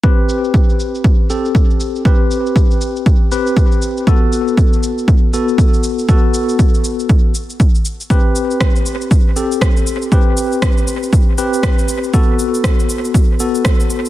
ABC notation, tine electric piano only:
X:1
M:4/4
L:1/8
Q:"Swing 16ths" 1/4=119
K:Ador
V:1 name="Tine electric piano"
[CGB]4- [CGB] [CGA]3 | [CGB]4- [CGB] [CGB]3 | [B,FA]4- [B,FA] [B,FA]3 | [B,FA]4- [B,FA] z3 |
[CGB]4- [CGB] [CGA]3 | [CGB]4- [CGB] [CGB]3 | [B,FA]4- [B,FA] [B,FA]3 |]